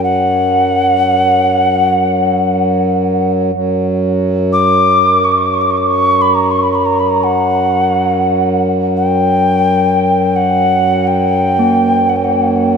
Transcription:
Already playing: F#2
0.04 F#5
3.53 F#2
4.53 D6
5.24 C#6
5.32 D6
5.37 C#6
5.46 D6
5.54 C#6
5.61 D6
5.70 C#6
5.77 D6
5.87 C#6
6.22 B5
6.35 A#5
6.51 C#6
6.63 B5
6.72 B5 C#6
6.85 A#5
6.99 B5
7.09 A#5
7.24 F#5
8.96 G5
10.36 F#5
11.07 G5
11.59 A#3
12.09 F#5
12.16 G5
12.24 F#5
12.33 G5
12.42 F#5
12.48 G5
12.56 F#5
12.64 G5
12.72 F#5

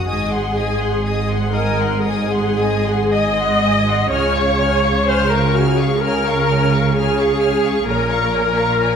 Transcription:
0.07 G#1 G#2 G#4 D#5 G#5 D#6
0.31 F#5 C6
0.56 D#5 G#5 D#6
0.80 F#5 C6
1.06 D#5 G#5 D#6
1.30 F#5 C6
1.54 A#4 D#5 G#5 D#6
1.79 F#5 C6
2.04 G#4 D#5 G#5 D#6
2.31 F#5 C6
2.58 D#5 G#5 D#6
2.85 F#5 C6
3.13 D#5 G#5 D#6
3.38 F#5 C6
3.63 D#5 G#5 D#6
3.88 F#5 C6
4.10 C#2 C#3 C#5 G#5 F6
4.36 F5 C#6
4.60 C#5 G#5 F6
4.84 F5 C#6
5.07 C5 C#5 G#5 F6
5.31 A#4 F5 C#6
5.55 F#4 C#5 G#5 F6
5.77 G#4 F5 C#6
6.01 A#4 C#5 G#5 F6
6.27 F5 C#6
6.49 C#5 G#5 F6
6.74 F5 C#6
6.95 G#4 C#5 G#5 F6
7.19 F5 C#6
7.41 C#5 G#5 F6
7.65 F5 C#6
7.87 A#1 A#2 A#4 C#5 G#5 A#5
8.10 F5 A#5 C#6
8.33 C#5 G#5 A#5
8.56 F5 A#5 C#6
8.78 C#5 G#5 A#5

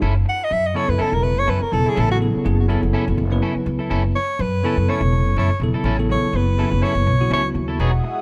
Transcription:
0.02 F#1 C#4 E4 A4
0.15 muted clean electric guitar stroke
0.25 F#5, muted clean electric guitar stroke
0.44 D#5
0.50 F#2 E5, muted clean electric guitar stroke
0.66 D#5
0.74 C#3 F#3 B3 C#4 E4 A4 C#5
0.88 F#2 B4
0.98 C#4 E4 A4, muted upright bass stroke
1.12 E1 A#4, muted clean electric guitar stroke
1.23 B4, muted clean electric guitar stroke
1.36 F#1 C#5
1.47 F#2 C#4 E4 A4 B4
1.60 A#4, muted clean electric guitar stroke, muted upright bass stroke
1.72 E1 C#3 F#3 B3 E4 A4, muted clean electric guitar stroke
1.85 E4 A4
1.89 G#4
1.95 A1 C#4 E4 A4
2.00 A4
2.09 C#3 F#3 B3 E4 F#4 A4, muted clean electric guitar stroke
2.20 C#3 F#3 B3 E4 A4, muted clean electric guitar stroke
2.35 muted upright bass stroke
2.44 F#1 C#3 F#3 B3 E4 G#4, muted clean electric guitar stroke
2.68 C#3 F#3 B3 C#4 E4 A4
2.82 F#1, muted clean electric guitar stroke
2.93 C#4 E4 A4
3.06 F#1, muted clean electric guitar stroke
3.17 F#1, muted clean electric guitar stroke
3.30 C#3 F#3 B3 E4 B4
3.42 C#4 E4 A4
3.55 muted clean electric guitar stroke, muted upright bass stroke
3.66 C#2, muted clean electric guitar stroke
3.79 E4 A4
3.90 F#1 C#4 E4 A4
4.04 muted clean electric guitar stroke
4.16 C#5, muted clean electric guitar stroke
4.39 F#2 B4, muted clean electric guitar stroke
4.63 C#3 F#3 B3 C#4 E4 A4
4.77 F#2, muted clean electric guitar stroke
4.88 C#4 E4 A4 C#5, muted upright bass stroke
5.01 E1, muted clean electric guitar stroke
5.13 muted clean electric guitar stroke
5.26 F#1
5.36 F#2 C#4 E4 A4 C#5
5.48 muted upright bass stroke, muted clean electric guitar stroke
5.60 E1 C#3 F#3 B3 E4 A4, muted clean electric guitar stroke
5.74 E4 A4
5.84 A1 C#4 E4 A4
5.97 C#3 F#3 B3 E4 A4, muted clean electric guitar stroke
6.09 C#3 F#3 B3 E4 A4 C#5, muted clean electric guitar stroke
6.23 muted upright bass stroke
6.33 F#1 C#3 F#3 B3 E4 B4, muted clean electric guitar stroke
6.58 C#3 F#3 B3 C#4 E4 A4 B4
6.70 F#1, muted clean electric guitar stroke
6.81 C#4 E4 A4 C#5
6.95 F#1
7.07 B1, muted clean electric guitar stroke
7.20 C#3 F#3 B3 E4 F#4
7.30 C#2 C#4 E4 A4 C#5
7.43 muted clean electric guitar stroke
7.54 D#2, muted clean electric guitar stroke
7.68 E4 A4
7.79 E1 F#3 B3 D#4 G#4 E5 F#5 D#6
7.92 muted clean electric guitar stroke
8.04 muted clean electric guitar stroke

